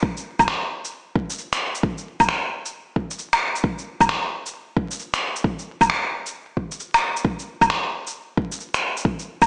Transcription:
0.03 kick
0.17 shaker
0.39 kick, low woodblock, shaker
0.48 finger snap
0.85 shaker
1.15 kick
1.30 shaker
1.38 shaker
1.53 finger snap, shaker
1.75 shaker
1.83 kick
1.98 shaker
2.20 kick, low woodblock, shaker
2.29 finger snap
2.66 shaker
2.96 kick
3.11 shaker
3.19 shaker
3.33 finger snap, low woodblock, shaker
3.56 shaker
3.64 kick
3.78 shaker
4.01 kick, low woodblock, shaker
4.09 finger snap
4.46 shaker
4.77 kick
4.91 shaker
4.99 shaker
5.14 finger snap, shaker
5.36 shaker
5.44 kick
5.59 shaker
5.81 kick, low woodblock, shaker
5.90 finger snap
6.26 shaker
6.57 kick
6.71 shaker
6.80 shaker
6.94 finger snap, low woodblock, shaker
7.17 shaker
7.25 kick
7.39 shaker
7.61 kick, low woodblock, shaker
7.70 finger snap
8.07 shaker
8.37 kick
8.52 shaker
8.60 shaker
8.74 finger snap, shaker
8.97 shaker
9.05 kick
9.19 shaker
9.42 kick, low woodblock, shaker

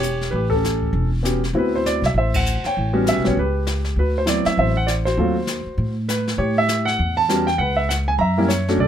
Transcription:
Already playing: E1 G4 C#5
0.03 hi-hat pedal
0.21 snare
0.31 A1 B4, brush sweep
0.36 G4
0.50 A4, kick
0.55 C#4
0.64 snare, hi-hat pedal
0.83 kick
0.93 E1, brush sweep
1.23 B3 C#4 F#4 G4, snare, hi-hat pedal
1.44 snare
1.53 D2 B3 C4 E4 F#4, brush sweep
1.58 F#4 B4
1.76 C5
1.86 D5, snare, hi-hat pedal
2.02 C2, snare
2.06 E5
2.14 A1 E5, brush sweep
2.18 C5
2.34 F#5, kick, ride
2.46 hi-hat pedal
2.64 C#5 G5, muted upright bass stroke, snare
2.76 A1, brush sweep
2.93 G3 B3 C#4 F#4
3.07 E5, snare, hi-hat pedal
3.17 B1
3.24 A#1 G3 B3 C#4 F#4 C#5, snare
3.37 C#2 G4 B4, brush sweep
3.67 snare, hi-hat pedal
3.85 snare
3.96 D2 F#4 B4, brush sweep
4.18 C5
4.26 F#3 B3 C4 E4 D5, snare, hi-hat pedal
4.45 E5, muted upright bass stroke, snare
4.57 A1 C5 E5, brush sweep
4.77 F#5
4.87 D5, snare, hi-hat pedal
5.05 F#4 C5, snare
5.17 D#2 F#3 A3 C4 F4, brush sweep
5.47 snare, hi-hat pedal
5.66 muted upright bass stroke
5.78 A2, brush sweep
6.09 B4, snare, hi-hat pedal
6.27 snare
6.38 A2 G4 C#5, brush sweep
6.58 E5
6.69 snare, hi-hat pedal
6.85 F#5, snare
6.98 E2, brush sweep
7.17 A5
7.29 G3 B3 C#4 F#4, snare, hi-hat pedal
7.47 G5, snare
7.58 C#2 B4 F#5, brush sweep
7.77 E5
7.89 F#5, snare, hi-hat pedal
8.08 G#5
8.18 F#2 E5 A#5, brush sweep
8.38 G3 A#3 C#4 E4
8.48 C#5, snare, hi-hat pedal
8.68 A3 C#4 D4 F#4, snare
8.78 B1 D5, brush sweep
8.82 A4

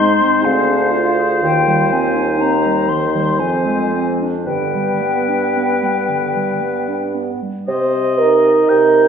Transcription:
Already playing: G#2 G#3 D#4 C5 C6
0.22 C4
0.43 D2 C4 G#4 F5
0.69 D4
0.92 F4
1.18 G#4
1.42 D#2 D#3 G5
1.68 G3
1.92 C4 G#5
2.16 D#4
2.38 C4 D#4 A#5
2.66 G3
2.89 D#3 C6
3.16 G3
3.39 F2 F3 C4 G#5
3.66 G#3
3.94 C4
4.22 D4
4.46 G2 D3 B3 B4 G5
4.76 G3
5.02 B3
5.28 D4
5.57 B3
5.83 G3
6.09 D3
6.36 G3
6.61 B3
6.89 D4
7.15 B3
7.42 G3
7.67 C3 C5 D#5
8.18 D#4 A#4 D#5
8.69 C3 G5

